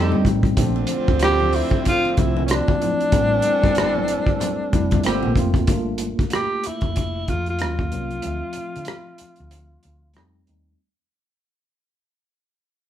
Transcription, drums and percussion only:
0.12 high conga medium
0.25 kick medium
0.25 closed hi-hat medium
0.25 low conga medium
0.43 kick medium
0.43 closed hi-hat soft
0.57 kick loud
0.57 closed hi-hat medium
0.76 muted conga soft
0.87 closed hi-hat medium
0.87 high conga soft
1.08 kick medium
1.19 cross-stick loud
1.19 closed hi-hat medium
1.19 high conga medium
1.40 muted conga soft
1.40 low conga medium
1.53 open hi-hat medium
1.70 kick medium
1.70 closed hi-hat soft
1.85 kick medium
1.85 closed hi-hat medium
1.85 muted conga soft
2.05 muted conga soft
2.17 kick medium
2.17 closed hi-hat medium
2.36 high conga medium
2.48 cross-stick medium
2.48 closed hi-hat medium
2.68 kick medium
2.68 muted conga soft
2.68 high conga medium
2.82 closed hi-hat medium
2.82 low conga medium
3.01 closed hi-hat soft
3.12 kick loud
3.12 closed hi-hat medium
3.12 muted conga soft
3.42 closed hi-hat medium
3.42 high conga soft
3.64 kick loud
3.64 closed hi-hat soft
3.75 cross-stick loud
3.75 closed hi-hat medium
3.75 high conga medium
3.95 low conga medium
4.08 closed hi-hat medium
4.27 kick medium
4.40 closed hi-hat medium
4.40 low conga medium
4.73 kick medium
4.73 closed hi-hat medium
4.91 kick medium
4.91 closed hi-hat soft
4.91 high conga medium
5.03 cross-stick medium
5.03 closed hi-hat medium
5.03 muted conga soft
5.23 muted conga soft
5.23 high conga medium
5.36 kick medium
5.36 closed hi-hat medium
5.36 low conga medium
5.54 kick medium
5.54 closed hi-hat soft
5.67 kick loud
5.67 closed hi-hat medium
5.98 closed hi-hat medium
6.19 kick medium
6.19 closed hi-hat soft
6.30 cross-stick loud
6.30 closed hi-hat medium
6.63 closed hi-hat medium
6.81 kick medium
6.81 closed hi-hat soft
6.96 kick medium
6.96 closed hi-hat medium
7.28 kick medium
7.28 closed hi-hat medium
7.46 closed hi-hat soft
7.59 cross-stick loud
7.59 closed hi-hat medium
7.79 kick medium
7.92 closed hi-hat medium
8.11 closed hi-hat soft
8.22 closed hi-hat medium
8.53 closed hi-hat medium
8.76 closed hi-hat soft
8.85 cross-stick loud
8.85 closed hi-hat medium
9.18 closed hi-hat medium
9.36 closed hi-hat soft
9.51 closed hi-hat medium
9.83 closed hi-hat medium
10.14 cross-stick medium
10.14 closed hi-hat medium
10.47 closed hi-hat soft

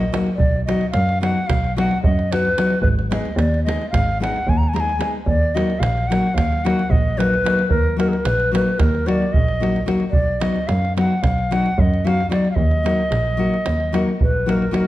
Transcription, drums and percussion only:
0.01 davul high soft
0.14 davul high medium
0.26 davul high soft
0.40 davul low medium
0.69 davul high medium
0.81 davul high soft
0.94 davul high medium
1.09 davul high soft
1.23 davul high medium
1.50 davul high medium
1.50 davul low medium
1.64 davul high soft
1.78 davul high medium
1.91 davul high soft
2.04 davul low medium
2.19 davul high soft
2.33 davul high medium
2.45 davul high soft
2.58 davul high medium
2.70 davul high soft
2.83 davul low medium
2.99 davul high soft
3.12 davul high medium
3.25 davul high soft
3.39 davul high medium
3.54 davul high soft
3.69 davul high medium
3.82 davul high soft
3.94 davul high medium
3.94 davul low medium
4.24 davul high medium
4.36 davul high soft
4.49 davul low medium
4.63 davul high soft
4.76 davul high medium
4.89 davul high soft
5.01 davul high medium
5.27 davul low medium
5.57 davul high medium
5.70 davul high soft
5.83 davul high medium
5.98 davul high soft
6.12 davul high medium
6.38 davul high medium
6.38 davul low medium
6.52 davul high soft
6.66 davul high medium
6.79 davul high soft
6.92 davul low medium
7.20 davul high medium
7.34 davul high soft
7.46 davul high medium
7.59 davul high soft
7.71 davul low medium
8.00 davul high medium
8.13 davul high soft
8.25 davul high medium
8.40 davul high soft
8.55 davul high medium
8.80 davul high medium
8.80 davul low medium
8.95 davul high soft
9.09 davul high medium
9.22 davul high soft
9.34 davul low medium
9.48 davul high soft
9.63 davul high medium
9.76 davul high soft
9.88 davul high medium
10.00 davul high soft
10.13 davul low medium
10.41 davul high medium
10.56 davul high soft
10.69 davul high medium
10.85 davul high soft
10.98 davul high medium
11.24 davul high medium
11.24 davul low medium
11.38 davul high soft
11.52 davul high medium
11.66 davul high soft
11.79 davul low medium
11.94 davul high soft
12.07 davul high medium
12.20 davul high soft
12.32 davul high medium
12.45 davul high soft
12.56 davul low medium
12.71 davul high soft
12.86 davul high medium
13.12 davul high medium
13.54 davul high soft
13.66 davul high medium
13.80 davul high soft
13.94 davul high medium
14.21 davul low medium
14.49 davul high medium
14.62 davul high soft
14.74 davul high medium

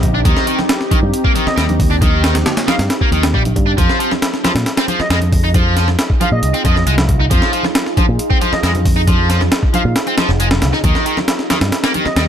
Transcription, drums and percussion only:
0.03 kick loud
0.03 closed hi-hat medium
0.03 low conga medium
0.25 kick loud
0.25 closed hi-hat medium
0.25 high conga medium
0.37 snare medium
0.47 closed hi-hat medium
0.59 snare medium
0.59 high conga medium
0.69 snare loud
0.69 closed hi-hat loud
0.81 snare soft
0.91 kick loud
0.91 closed hi-hat medium
0.91 high conga medium
1.14 closed hi-hat medium
1.25 kick medium
1.36 closed hi-hat medium
1.36 high conga medium
1.47 snare medium
1.58 snare loud
1.58 closed hi-hat medium
1.69 closed hi-hat soft
1.69 high conga medium
1.80 kick loud
1.80 open hi-hat medium
1.80 low conga medium
2.02 kick loud
2.02 closed hi-hat medium
2.02 high conga loud
2.24 snare loud
2.24 closed hi-hat medium
2.35 snare loud
2.35 closed hi-hat medium
2.35 high conga medium
2.46 snare loud
2.46 closed hi-hat medium
2.46 low conga medium
2.57 snare loud
2.57 closed hi-hat medium
2.68 snare loud
2.68 closed hi-hat medium
2.68 high conga medium
2.79 snare loud
2.79 closed hi-hat medium
2.90 snare loud
2.90 closed hi-hat medium
3.01 kick medium
3.12 closed hi-hat medium
3.12 high conga medium
3.23 snare loud
3.23 closed hi-hat medium
3.34 kick medium
3.45 closed hi-hat medium
3.45 high conga medium
3.56 kick medium
3.56 closed hi-hat medium
3.56 low conga medium
3.78 kick loud
3.78 closed hi-hat medium
3.78 high conga medium
3.89 snare medium
4.00 closed hi-hat medium
4.11 snare medium
4.11 high conga medium
4.22 snare loud
4.22 closed hi-hat medium
4.34 snare soft
4.45 snare loud
4.45 closed hi-hat medium
4.45 high conga medium
4.56 snare loud
4.56 closed hi-hat medium
4.66 snare loud
4.66 closed hi-hat medium
4.77 snare loud
4.77 closed hi-hat medium
4.88 closed hi-hat medium
4.88 high conga medium
5.00 snare medium
5.10 snare loud
5.10 closed hi-hat loud
5.21 closed hi-hat soft
5.21 high conga medium
5.32 kick medium
5.32 open hi-hat medium
5.32 low conga medium
5.54 kick loud
5.54 closed hi-hat medium
5.54 high conga loud
5.77 snare soft
5.77 closed hi-hat medium
5.87 snare soft
5.87 high conga medium
5.99 snare loud
5.99 closed hi-hat medium
6.10 kick loud
6.21 closed hi-hat medium
6.21 high conga medium
6.43 closed hi-hat medium
6.54 closed hi-hat soft
6.65 kick loud
6.65 closed hi-hat medium
6.65 high conga medium
6.76 snare soft
6.87 closed hi-hat medium
6.98 snare loud
6.98 high conga loud
7.09 kick loud
7.09 closed hi-hat medium
7.09 low conga medium
7.30 kick loud
7.30 closed hi-hat medium
7.30 high conga medium
7.42 snare medium
7.53 closed hi-hat medium
7.63 snare medium
7.63 high conga medium
7.75 snare loud
7.75 closed hi-hat loud
7.86 snare soft
7.97 kick loud
7.97 closed hi-hat medium
7.97 high conga medium
8.19 closed hi-hat medium
8.31 kick medium
8.41 closed hi-hat medium
8.41 high conga medium
8.53 snare medium
8.63 snare loud
8.63 closed hi-hat loud
8.75 closed hi-hat soft
8.75 high conga loud
8.85 kick loud
8.85 open hi-hat medium
8.85 low conga medium
9.07 kick loud
9.07 closed hi-hat medium
9.07 high conga medium
9.30 snare soft
9.30 closed hi-hat medium
9.41 snare soft
9.41 high conga medium
9.52 snare loud
9.52 closed hi-hat loud
9.63 kick loud
9.74 closed hi-hat medium
9.74 high conga loud
9.96 snare loud
9.96 closed hi-hat medium
10.07 closed hi-hat soft
10.18 snare loud
10.18 closed hi-hat medium
10.18 high conga medium
10.29 snare soft
10.40 closed hi-hat medium
10.51 snare loud
10.51 high conga medium
10.62 snare loud
10.62 closed hi-hat medium
10.62 low conga medium
10.73 snare soft
10.84 kick loud
10.84 closed hi-hat medium
10.84 high conga loud
10.95 snare medium
11.06 closed hi-hat medium
11.17 snare medium
11.17 high conga medium
11.28 snare loud
11.28 closed hi-hat medium
11.39 snare soft
11.50 snare loud
11.50 closed hi-hat medium
11.50 high conga medium
11.61 snare loud
11.61 closed hi-hat medium
11.72 snare loud
11.72 closed hi-hat medium
11.84 snare loud
11.84 closed hi-hat medium
11.94 closed hi-hat medium
11.94 high conga medium
12.05 snare soft
12.16 snare loud
12.16 closed hi-hat medium

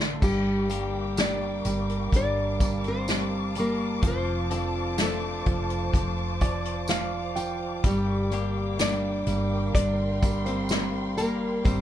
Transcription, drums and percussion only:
0.00 snare medium
0.22 kick loud
0.22 crash medium
0.22 tambourine soft
0.70 closed hi-hat medium
0.70 tambourine soft
1.17 snare loud
1.17 closed hi-hat medium
1.17 tambourine medium
1.65 closed hi-hat medium
1.65 tambourine soft
1.90 closed hi-hat medium
2.12 kick medium
2.12 closed hi-hat medium
2.12 tambourine soft
2.60 kick medium
2.60 closed hi-hat medium
2.60 tambourine soft
2.84 closed hi-hat soft
3.08 snare medium
3.08 closed hi-hat medium
3.08 tambourine medium
3.55 closed hi-hat medium
3.55 tambourine soft
4.03 kick loud
4.03 closed hi-hat medium
4.03 tambourine soft
4.51 closed hi-hat medium
4.51 tambourine soft
4.98 snare loud
4.98 closed hi-hat medium
4.98 tambourine medium
5.46 kick medium
5.46 closed hi-hat medium
5.70 closed hi-hat medium
5.94 kick medium
5.94 closed hi-hat medium
5.94 tambourine soft
6.41 kick medium
6.41 closed hi-hat medium
6.41 tambourine soft
6.65 closed hi-hat soft
6.88 snare medium
6.88 closed hi-hat medium
6.88 tambourine medium
7.36 closed hi-hat medium
7.36 tambourine soft
7.84 kick loud
7.84 closed hi-hat medium
7.84 tambourine soft
8.32 closed hi-hat medium
8.32 tambourine soft
8.79 snare loud
8.79 closed hi-hat medium
8.79 tambourine medium
9.27 closed hi-hat medium
9.27 tambourine soft
9.75 kick medium
9.75 closed hi-hat medium
9.75 tambourine soft
10.22 kick medium
10.22 closed hi-hat medium
10.22 tambourine soft
10.46 closed hi-hat soft
10.69 snare loud
10.69 closed hi-hat medium
10.69 tambourine medium
11.18 closed hi-hat medium
11.18 tambourine soft
11.65 kick loud
11.65 closed hi-hat medium
11.65 tambourine soft

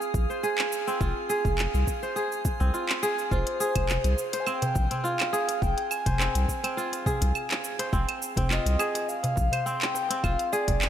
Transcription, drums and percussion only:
0.02 cabasa soft
0.14 kick loud
0.14 cabasa medium
0.30 cabasa soft
0.44 cabasa soft
0.58 clap medium
0.72 cabasa medium
0.88 cabasa soft
1.01 kick loud
1.01 cabasa soft
1.30 cabasa medium
1.45 kick loud
1.45 cabasa soft
1.58 clap medium
1.58 cabasa soft
1.74 cabasa soft
1.87 kick medium
1.87 cabasa medium
2.03 cabasa soft
2.16 cabasa soft
2.32 cabasa soft
2.45 kick loud
2.45 cabasa medium
2.60 kick medium
2.60 cabasa soft
2.74 cabasa soft
2.89 clap medium
3.03 cabasa medium
3.19 cabasa soft
3.31 kick medium
3.31 cabasa soft
3.47 closed hi-hat soft
3.61 cabasa medium
3.75 kick loud
3.75 closed hi-hat medium
3.75 darbuka dum medium
3.75 cabasa soft
3.75 claves medium
3.89 clap medium
3.89 cabasa soft
4.04 closed hi-hat soft
4.04 cabasa soft
4.17 darbuka ka soft
4.17 cabasa medium
4.33 closed hi-hat medium
4.33 darbuka tek medium
4.33 cabasa soft
4.47 cabasa soft
4.47 claves medium
4.62 closed hi-hat soft
4.62 darbuka ka medium
4.62 darbuka dum medium
4.62 cabasa soft
4.75 kick loud
4.75 darbuka tek medium
4.75 cabasa medium
4.91 closed hi-hat medium
4.91 darbuka dum medium
4.91 cabasa soft
5.05 cabasa soft
5.20 clap medium
5.20 closed hi-hat soft
5.20 claves medium
5.33 darbuka tek medium
5.33 cabasa medium
5.48 closed hi-hat soft
5.48 darbuka ka medium
5.48 cabasa soft
5.62 kick loud
5.62 cabasa soft
5.78 closed hi-hat soft
5.91 cabasa medium
5.91 claves medium
6.06 kick medium
6.06 closed hi-hat medium
6.06 darbuka dum medium
6.06 cabasa soft
6.20 clap medium
6.20 cabasa soft
6.35 closed hi-hat soft
6.35 cabasa soft
6.49 kick medium
6.49 darbuka ka medium
6.49 cabasa medium
6.64 closed hi-hat medium
6.64 cabasa soft
6.64 claves medium
6.78 cabasa soft
6.92 closed hi-hat soft
6.92 darbuka ka medium
6.92 cabasa soft
7.06 kick medium
7.06 darbuka tek medium
7.06 darbuka dum medium
7.06 cabasa medium
7.21 kick medium
7.21 closed hi-hat medium
7.21 darbuka ka medium
7.21 cabasa soft
7.35 cabasa soft
7.35 claves medium
7.50 clap medium
7.50 closed hi-hat soft
7.50 darbuka ka soft
7.50 darbuka tek medium
7.64 cabasa medium
7.79 closed hi-hat medium
7.79 darbuka ka medium
7.79 darbuka tek medium
7.79 cabasa soft
7.93 kick loud
7.93 cabasa soft
8.09 closed hi-hat soft
8.09 claves medium
8.22 cabasa medium
8.36 kick loud
8.36 closed hi-hat medium
8.36 darbuka dum medium
8.36 cabasa soft
8.51 clap medium
8.51 cabasa soft
8.66 closed hi-hat soft
8.66 cabasa soft
8.79 darbuka ka medium
8.79 cabasa medium
8.79 claves medium
8.95 closed hi-hat medium
8.95 darbuka tek medium
8.95 cabasa soft
9.09 cabasa soft
9.23 closed hi-hat soft
9.23 darbuka ka medium
9.23 darbuka dum medium
9.23 cabasa soft
9.36 kick medium
9.36 darbuka tek medium
9.36 cabasa medium
9.52 closed hi-hat medium
9.52 darbuka dum medium
9.52 cabasa soft
9.52 claves medium
9.66 cabasa soft
9.82 clap medium
9.82 closed hi-hat soft
9.95 darbuka tek medium
9.95 cabasa medium
10.09 closed hi-hat medium
10.09 darbuka ka medium
10.09 cabasa soft
10.24 kick loud
10.24 cabasa soft
10.24 claves medium
10.39 closed hi-hat soft
10.39 cabasa soft
10.53 cabasa medium
10.68 kick loud
10.68 closed hi-hat medium
10.68 darbuka tek medium
10.68 darbuka dum medium
10.68 cabasa soft
10.82 clap medium
10.82 cabasa soft

